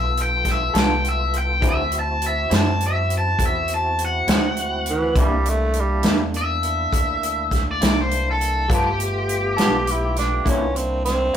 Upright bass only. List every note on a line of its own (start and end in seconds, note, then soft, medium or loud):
0.00 0.72 B1 medium
0.74 1.60 C2 medium
1.62 2.48 D2 medium
2.51 3.37 F#2 medium
3.38 4.25 E2 medium
4.28 5.14 D2 medium
5.15 6.02 C2 medium
6.04 6.90 E2 medium
6.92 7.78 D2 medium
7.82 8.67 C2 medium
8.70 9.55 G1 medium
9.59 10.44 B1 medium
10.45 11.32 C2 medium